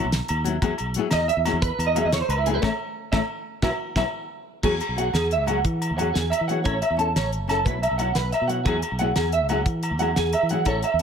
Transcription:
0.04 B1
0.12 snare, closed hi-hat
0.28 D#2, closed hi-hat, low agogo
0.44 F#3 B3 E4, closed hi-hat
0.62 E2 F#3 B3 E4 G#4, kick, closed hi-hat, low agogo
0.78 B1, closed hi-hat, low agogo
0.94 F#3 B3, closed hi-hat
0.99 E4 G#4
1.11 E2 D#5, snare, closed hi-hat, low agogo
1.28 E5, closed hi-hat
1.37 E2
1.45 F#3 B3 E4 G#4, snare, closed hi-hat, low agogo
1.53 E2
1.62 B4, kick, closed hi-hat
1.79 E2, closed hi-hat, low agogo
1.87 D#5
1.95 F#3 B3 E4 G#4 E5, closed hi-hat, low agogo
2.05 E2 D#5
2.13 C#5, snare, closed hi-hat
2.21 C5
2.29 C#2 B4, closed hi-hat, low agogo
2.38 E4
2.46 F#3 B3 E4 G#4, closed hi-hat
2.54 B4
2.62 A1 A3 C#4 E4 A4 C#5 E5, kick, snare, low agogo
3.12 A1 A3 C#4 E4 A4 C#5 E5, kick, snare, low agogo
3.62 B1 F#3 B3 E4 F#4 B4 E5, kick, snare, low agogo
3.96 B1 F#3 B3 E4 F#4 B4 E5, kick, snare, low agogo
4.63 E2 F#3 B3 F#4 G#4, kick, crash, low agogo
4.80 closed hi-hat, low agogo
4.89 B1
4.96 F#3 B3 F#4 G#4 F#5, closed hi-hat
5.13 E2 G#4, snare, closed hi-hat, low agogo
5.31 E5, closed hi-hat
5.39 C#2
5.46 F#3 B3 F#4 G#4 F#5, closed hi-hat, low agogo
5.65 E3, kick, closed hi-hat
5.82 closed hi-hat, low agogo
5.91 E2
5.98 F#3 F#4 G#4 F#5, closed hi-hat, low agogo
6.14 E2 G#4, snare, closed hi-hat
6.30 E5, closed hi-hat, low agogo
6.41 E3
6.48 F#3 B3 F#4 G#4 F#5, closed hi-hat
6.64 A1 C#4 E4 A4 C#5, kick, closed hi-hat, low agogo
6.82 E5, closed hi-hat, low agogo
6.90 E2
6.97 C#4 E4 A4 A5, closed hi-hat
7.16 A1 C#5, snare, closed hi-hat, low agogo
7.33 closed hi-hat
7.40 F#1
7.48 C#4 E4 A4 A5, snare, closed hi-hat, low agogo
7.65 B1 F#3 B3 E4 B4, kick, closed hi-hat
7.82 E5, closed hi-hat, low agogo
7.91 B1
7.98 F#3 B3 E4 F#5, closed hi-hat, low agogo
8.15 B1 B4, snare, closed hi-hat
8.32 E5, closed hi-hat, low agogo
8.41 B2
8.48 F#3 B3 E4 F#5, closed hi-hat
8.65 E2 F#3 B3 E4 G#4, kick, closed hi-hat, low agogo
8.82 closed hi-hat, low agogo
8.92 B1
8.99 F#3 B3 E4 F#5, closed hi-hat
9.03 G#4
9.16 E2 G#4, snare, closed hi-hat, low agogo
9.32 E5, closed hi-hat
9.43 C#2
9.49 F#3 B3 E4 G#4 F#5, closed hi-hat, low agogo
9.66 E3, kick, closed hi-hat
9.83 closed hi-hat, low agogo
9.91 E2
9.99 F#3 B3 E4 G#4 F#5, closed hi-hat, low agogo
10.16 E2 G#4, snare, closed hi-hat
10.33 E5, closed hi-hat, low agogo
10.43 E3
10.49 F#3 B3 E4 F#5, closed hi-hat
10.53 G#4
10.65 A1 E4 A4 C#5, muted nylon-string guitar stroke, kick, closed hi-hat, low agogo
10.83 E5, closed hi-hat, low agogo
10.94 E2

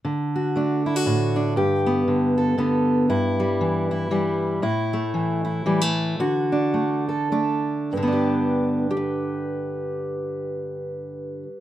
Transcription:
0.05 D3
0.36 F#4
0.56 A3 D4
0.86 E4
0.96 F#4
1.06 A2
1.36 D4
1.56 G2 G4
1.86 B3
2.08 D3
2.38 A4
2.58 D3 B3
3.09 G2 E4
3.40 G3
3.61 E3
3.91 E4
4.11 E3 G3
4.62 A2 E4
4.93 A3
5.14 E3
5.45 E4
5.66 E3 G3
5.81 A3
6.20 D3 F#4
6.52 D4
6.74 A3
7.09 A4
7.32 A3 D4
7.93 G2
7.97 D3
8.03 B3
8.08 D4
8.13 G4
8.91 G4
8.97 B4

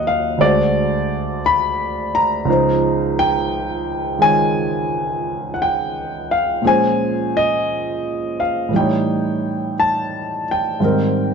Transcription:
Already playing: D#2 D#3 F3 F#3 C#5 D#5 F#5
0.07 F5
0.37 D2 D3 G#3 D5
0.41 F#4 C5
1.46 B5
2.15 A#5
2.45 C#2 C#3 F3
2.49 D#4 C5
3.19 G5
4.19 D#3 G#3 F4 C#5 G#5
5.54 F#5
5.62 G5
6.31 F5
6.62 A#2 F3 G#3 C#4
6.66 C5 G#5
7.37 D#5
8.40 F5
8.69 A2 E3
8.74 G3 D#4 G5
8.80 C#5
9.80 A5
10.51 G5
10.80 G#2 D#3 G3 C4 A#4

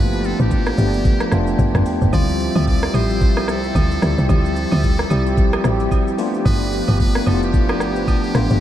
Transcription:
Already playing: G1 F3 A3 A#3 B3 D4 E4 F4 G4 B4
0.13 shaker
0.24 A4, shaker
0.39 A1 G4, shaker
0.51 kick, shaker
0.66 cross-stick, shaker
0.77 G1 A3 B3 D4 G4, shaker
0.94 shaker
1.05 kick, shaker
1.20 cross-stick, shaker
1.31 F1 A3 B3 D4 F4 A5, cross-stick, shaker
1.47 shaker
1.59 G1 G5, kick, shaker
1.74 G1, cross-stick, mid tom, shaker
1.86 G5, open hi-hat, shaker
2.01 G1, mid tom, shaker
2.13 D2 G3 C4 E4 F4 G4 D5 E5, kick, high agogo, shaker
2.29 shaker
2.40 shaker
2.55 D2, high agogo, shaker
2.67 D5, kick, shaker
2.83 cross-stick, shaker
2.94 A1 G3 C4 E4 G4 C5, high agogo, shaker
3.10 shaker
3.21 kick, shaker
3.37 cross-stick, high agogo
3.48 C2 A4, cross-stick, shaker
3.64 shaker
3.75 D2, kick, high agogo, shaker
3.91 shaker
4.02 D2 G3 C4 E4 G4, cross-stick, open hi-hat, shaker
4.18 C2, shaker
4.29 D2 A4, kick, high agogo, shaker
4.45 shaker
4.56 shaker
4.72 D2, high agogo, shaker
4.83 kick, shaker
4.99 cross-stick, shaker
5.10 C2 G3 C4 E4 G4, high agogo, shaker
5.26 shaker
5.37 kick, shaker
5.53 cross-stick, high agogo
5.64 A1 G3 C4 E4 F#4, cross-stick, shaker
5.72 G4
5.80 shaker
5.91 kick, high agogo, shaker
6.08 shaker
6.18 F3 A3 B3 D4 F4, open hi-hat, shaker
6.34 shaker
6.45 G1 B4, kick, high agogo, shaker
6.62 shaker
6.73 shaker
6.88 G1, high agogo, shaker
7.00 B4, kick, shaker
7.15 cross-stick, shaker
7.26 F1 A3 B3 D4 E4 A4, high agogo, shaker
7.34 F4
7.43 G4, shaker
7.53 kick, shaker
7.69 cross-stick, high agogo
7.80 G1, cross-stick, shaker
7.96 shaker
8.07 A1, kick, high agogo, shaker
8.24 shaker
8.34 A1 A3 B3 D4 F4, cross-stick, open hi-hat, shaker
8.50 G1, shaker

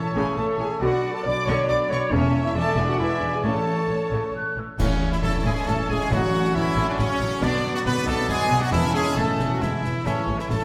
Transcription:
Already playing: A2 E3 A3 C#4 C#5 E5 A5
0.14 A1 A2 C#3 G#4 G#5
0.36 A1 A2 A3 A4 C#5 E5 A5
0.57 A1 A2 E3 G#4 G#5
0.80 B1 B2 D3 F#3 B3 D4 F#4 D5 F#5 B5
1.13 A4 A5
1.22 B1 B2 D3 D5 B5
1.27 D6
1.45 B1 B2 D3 C#5
1.49 C#6
1.66 B1 B2 F#3 D5 B5 D6
1.89 B1 B2 D3 C#5 C#6
2.11 E1 E2 C#3 E3 A3 C#4 C#5 E5 A5
2.44 E4 E5
2.55 E1 E2 E3 G#3 D4 A4 D5 G#5 A5
2.76 E1 E2 D3 G#4 G#5
2.88 F#4 F#5
2.98 E1 E2 G#3 E4 B4 D5 E5 G#5
3.21 E1 E2 E3
3.34 G#4 G#5
3.43 A1 A2 C#3 A3 C#4 A4 C#5 A5
3.89 A1 A2 E3 A5
4.11 A1 A2 C#3
4.24 C#6
4.34 A1 A2 A3 F#6
4.57 A1 A2 E3 E6
4.79 A1 A2 C#3 E3 A3 C#4 C#5 E5, concert bass drum, snare, crash
5.12 E3 E4 E5, snare
5.23 A1 A2 A3 E4 A4 A5, concert bass drum, snare
5.45 A1 A2 G#3 G#4 G#5
5.67 A1 A2 A3 C#4 A4 A5, concert bass drum, snare
5.89 A1 A2 G#3 G#4 G#5
6.01 snare
6.10 A1 A2 F#3 A3 F#4 F#5, concert bass drum, snare
6.34 snare
6.45 snare
6.54 A1 A2 E3 C#4 E4 E5, concert bass drum
6.77 A1 A2, snare
6.88 D3 D4 D5
6.98 A1 A2 C#3 C#4 C#5, concert bass drum, snare
7.20 A1 A2, snare
7.41 B1 B2 D3 B3 D4 D5 F#5, concert bass drum, snare, crash
7.75 F#3 F#4 F#5, snare
7.85 B1 B2 B3 B4 D5 F#5 B5, concert bass drum, snare
8.07 B1 B2 A3 A4 A5
8.29 B1 B2 G#3 B3 G#4 G#5, concert bass drum, snare
8.51 B1 B2
8.61 F#3 F#4 F#5, snare
8.71 E1 E2 E3 C#4 E4 E5 A5, concert bass drum, snare
8.94 G#3 G#4 G#5, snare
9.06 snare
9.17 E1 E2 A3 C#4 A4 E5 A5, concert bass drum
9.39 E1 E2, snare
9.49 F#3 F#4 F#5
9.61 E1 E2 E3 G#3 B3 E4 E5 G#5, concert bass drum, snare
9.84 E1 E2, snare
10.05 A1 A2 C#3 A3 C#4 C#5 E5 A5, concert bass drum, snare, crash
10.28 A1 A2
10.38 E3 E4 E5, snare
10.50 A1 A2 A3 C#4 A4 A5, concert bass drum, snare

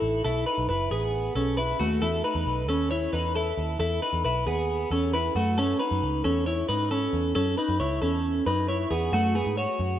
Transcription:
Already playing: E4 A4
0.02 A1
0.25 B1 E4 A4
0.46 D#4 B4
0.58 B1
0.69 F#1 E4 B4
0.91 A1 B3 G#4
1.35 B1 C#4 A4
1.57 E4 B4
1.79 D#2 A3 F#4
2.02 E2 E4 A4
2.24 D#4 B4
2.35 E2
2.46 B1
2.68 D#2 C#4 A4
2.91 E4 C#5
3.13 E2 D#4 B4
3.35 E4 A4
3.57 D#2
3.79 E2 E4 A4
4.02 D#4 B4
4.13 E2
4.25 B1 E4 B4
4.46 D#2 B3 G#4
4.91 E2 C#4 A4
5.14 E4 B4
5.35 F#2 A3 F#4
5.58 C#4 A4
5.79 D#4 B4
5.91 F#2
6.03 C#2
6.24 E2 C#4 A4
6.46 E4 C#5
6.69 G#2 D#4 B4
6.91 C#4 A4
7.13 E2
7.35 F#2 C#4 A4
7.58 D#4 B4
7.69 F#2
7.80 C#2 E4 C#5
8.02 E2 C#4 A4
8.46 F#2 D#4 B4
8.69 E4 C#5
8.91 E2 B3 G#4
9.12 F#2 A3 F#4
9.35 B3 G#4
9.46 G#2
9.57 F#4 C#5
9.79 F#2

